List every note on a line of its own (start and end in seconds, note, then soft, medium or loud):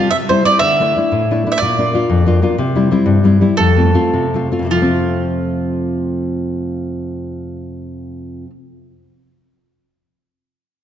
0.00 0.11 F4 medium
0.11 0.44 C3 medium
0.11 0.16 E5 loud
0.29 0.44 G3 medium
0.29 0.44 C4 soft
0.29 0.45 E4 medium
0.29 0.45 C5 medium
0.45 0.57 G3 soft
0.45 0.58 C4 soft
0.45 0.58 E4 soft
0.45 0.59 D5 loud
0.59 0.94 D3 medium
0.59 1.48 E5 loud
0.80 0.96 A3 soft
0.80 0.95 D4 soft
0.80 0.96 E4 soft
0.96 1.23 A3 medium
0.96 1.22 D4 soft
0.96 1.23 E4 medium
1.12 1.44 A2 medium
1.31 1.45 A3 medium
1.31 1.46 D4 soft
1.31 1.45 E4 medium
1.46 1.58 A3 soft
1.46 1.58 D4 soft
1.46 1.58 E4 medium
1.52 1.59 E5 medium
1.58 3.64 D5 loud
1.62 1.93 A#2 medium
1.78 1.93 A#3 soft
1.78 1.93 D4 soft
1.78 1.94 F4 medium
1.94 2.20 A#3 medium
1.94 2.20 D4 medium
1.94 2.21 F4 medium
2.10 2.41 F2 medium
2.26 2.41 A#3 medium
2.26 2.41 D4 medium
2.26 2.42 F4 medium
2.42 2.54 A#3 soft
2.42 2.55 D4 soft
2.42 2.55 F4 medium
2.58 2.90 C3 medium
2.75 2.90 G3 soft
2.75 2.90 C4 soft
2.75 2.90 E4 medium
2.91 3.19 G3 medium
2.91 3.19 C4 medium
2.91 3.19 E4 medium
3.06 3.40 G2 medium
3.24 3.40 G3 medium
3.24 3.40 C4 medium
3.24 3.41 E4 medium
3.41 3.55 G3 medium
3.41 3.55 C4 soft
3.41 3.55 E4 medium
3.57 3.94 F2 medium
3.57 4.46 A4 medium
3.77 3.93 A3 medium
3.77 3.94 C4 soft
3.77 3.94 F4 soft
3.94 4.25 A3 medium
3.94 4.25 C4 medium
3.94 4.25 F4 medium
4.13 4.50 C3 medium
4.34 4.51 A3 medium
4.34 4.50 C4 soft
4.34 4.51 F4 medium
4.52 4.66 A3 soft
4.52 4.66 C4 soft
4.52 4.67 F4 medium
4.59 8.44 F2 medium
4.65 8.47 C3 medium
4.70 8.50 F3 medium
4.70 8.50 F4 medium
4.76 8.52 A3 medium
4.82 8.55 C4 medium